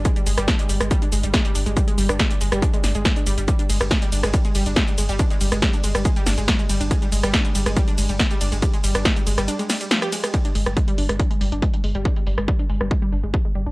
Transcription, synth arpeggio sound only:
\new Staff \with { instrumentName = "Synth arpeggio sound" } { \clef bass \time 4/4 \key c \minor \tempo 4 = 140 aes16 g16 aes16 g16 d'16 aes16 g16 aes16 g16 d'16 aes16 g16 aes16 g16 d'16 aes16 | g16 aes16 g16 d'16 aes16 g16 aes16 g16 d'16 aes16 d'16 aes16 aes16 d'16 g16 g16 | g16 d'16 aes16 g16 aes16 g16 d'16 aes16 g16 aes16 g16 d'16 aes16 g16 aes16 g16 | d'16 aes16 g16 aes16 g16 d'16 aes16 g16 aes16 g16 d'16 aes16 g16 aes16 g16 d'16 |
aes16 g16 aes16 g16 d'16 aes16 g16 aes16 g16 d'16 aes16 g16 aes16 g16 d'16 aes16 | g16 aes16 g16 d'16 aes16 g16 aes16 g16 d'16 aes16 g16 g16 f16 g'16 aes16 aes16 | g16 d'16 aes16 g16 aes16 g16 d'16 aes16 g16 aes16 g16 d'16 aes16 g16 aes16 g16 | d'16 aes16 g16 aes16 g16 d'16 aes16 g16 aes16 g16 d'16 aes16 g16 aes16 g16 d'16 | }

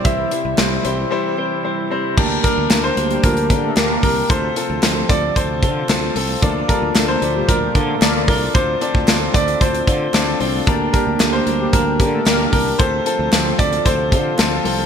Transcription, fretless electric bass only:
\new Staff \with { instrumentName = "Fretless electric bass" } { \clef bass \time 4/4 \key g \dorian \tempo 4 = 113 c,8 r16 c,16 c,8 c,8 r2 | d,8 r16 d,16 d,8 d,8 d,8 d8 d,8 c,8 | d,8 r16 d,16 d,8 d,8 d,8 d8 d,8 c,8 | d,8 r16 d,16 d,8 d,8 d,8 d8 d,8 c,8 |
d,8 r16 d,16 d,8 d,8 d,8 d8 d,8 c,8 | d,8 r16 d,16 d,8 d,8 d,8 d8 d,8 c,8 | d,8 r16 d,16 d,8 d,8 d,8 d8 d,8 c,8 | }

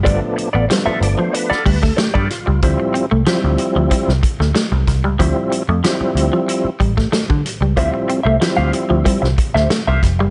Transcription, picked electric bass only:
\new Staff \with { instrumentName = "Picked electric bass" } { \clef bass \time 4/4 \key d \dorian \tempo 4 = 93 g,,16 r8 a,,16 r8 g,,16 r8. d,8 r16 g,16 r16 cis,16 | d,16 r8 c,16 r16 d,16 r16 d,16 r16 c,16 r16 d,16 r16 c,16 c,16 cis,16 | d,16 r8 f,16 r8 d,16 r8. a,,8 r16 d16 r16 cis,16 | d,16 r8 c,16 r16 d,16 r16 d,16 r16 c,16 r16 d,16 r16 c,16 f,,16 fis,,16 | }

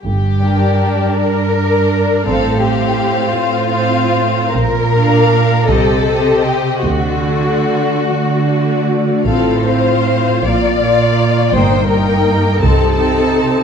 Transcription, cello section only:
\new Staff \with { instrumentName = "Cello section" } { \clef bass \time 6/8 \key g \minor \tempo 4. = 53 g,4. g,4. | a,4. a,4. | bes,4. c4. | d4. d4. |
a,4. bes,4. | g,4. c4. | }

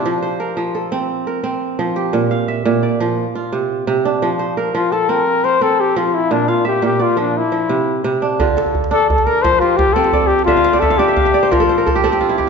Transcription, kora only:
<<
  \new Staff \with { instrumentName = "Kora" } { \time 12/8 \key f \major \tempo 4. = 115 << { d'16 r1 r4. r16 | r1. | r1. | r1. |
r1. | e''16 f''16 c''16 d''16 e''16 f''16 d''16 e''16 f''16 e''16 d''16 c''16 bes'16 a'16 c''16 bes'16 a'16 g'16 a'16 g'16 f'16 e'16 g'8 | } \\ { r8 c''8 bes'4 a'4. bes'4. r8 g'8~ | g'8 f''8 e''4 d''4. f'4. r8 d'8~ | d'8 c''8 bes'4 a''4. bes'4. r4 | r8 f''8 e''4 d''4. f4. r8 d'8 |
f'8 a'4. r8 bes'4 g'8 f'4 d''4~ | d''8 r1 r4. | } >> }
  \new Staff \with { instrumentName = "Kora" } { \clef bass \time 12/8 \key f \major f4 r8 f4 c'4 r8 c'4 f4 | bes,4 r8 bes,4 f8 r4 c4 c4 | f4 r8 f4 c'4 r8 c'4 f4 | bes,4 r8 bes,4 f8 r4 c4 c4 |
d4 r8 d'4 r8 f4 r8 c'4 r8 | d4 r8 d'4 r8 f4 r8 c'4 r8 | }
>>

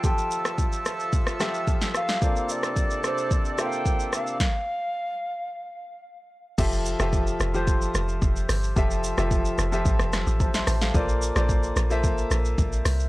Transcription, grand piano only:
\new Staff \with { instrumentName = "Grand piano" } { \time 4/4 \key f \major \tempo 4 = 110 << { r1 | r1 | r1 | r1 |
r2. <c'' a''>16 <e'' c'''>16 <c'' a''>16 <a' f''>16~ | <a' f''>16 r2. r8. | } \\ { <f f' g' a' g''>4. r4 <f f' g' a' e''>4~ <f f' g' a' e''>16 r16 | <bes f' a' c'' d''>4. r4 <bes f' a' c'' e'' f''>4~ <bes f' a' c'' e'' f''>16 r16 | r1 | <f f' g' a' e''>8 r16 <f f' g' a' e''>8. r16 <f f' g' a' c''>4. r8. |
<f f' g' a' e''>8 r16 <f f' g' a' e''>8. r16 <f f' g' a' e''>4. r8. | <bes f' a' c'' d''>8 r16 <bes f' a' c'' d''>8. r16 <bes f' a' c'' e''>4. r8. | } >> }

